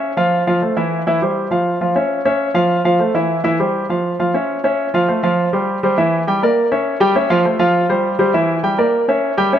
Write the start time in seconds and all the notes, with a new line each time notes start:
Already playing: C#4 C#5 E5
0.17 F3 F4 F5
0.47 F3 F4 F5
0.62 A3 A4 C5
0.77 E3 E4 E5
1.07 E3 E4 E5
1.22 G3 G4 C5
1.51 F3 F4 F5
1.81 F3 F4 F5
1.96 C#4 C#5 E5
2.25 C#4 C#5 E5
2.54 F3 F4 F5
2.85 F3 F4 F5
2.99 A3 A4 C5
3.14 E3 E4 E5
3.44 E3 E4 E5
3.59 G3 G4 C5
3.89 F3 F4 F5
4.19 F3 F4 F5
4.34 C#4 C#5 E5
4.64 C#4 C#5 E5
4.94 F3 F4 F5
5.08 A3 A4 C5
5.23 F3 F4 F5
5.53 G3 G4 C5
5.83 G3 G4 C5
5.98 E3 E4 E5
6.27 G3 G4 G5
6.42 A#3 A#4 D5
6.71 C#4 C#5 E5
7.00 G3 G4 G5
7.16 C#4 C#5 E5
7.30 F3 F4 F5
7.45 A3 A4 C5
7.59 F3 F4 F5
7.89 G3 G4 C5
8.19 G3 G4 C5
8.34 E3 E4 E5
8.63 G3 G4 G5
8.78 A#3 A#4 D5
9.08 C#4 C#5 E5
9.37 G3 G4 G5
9.53 C#4 C#5 E5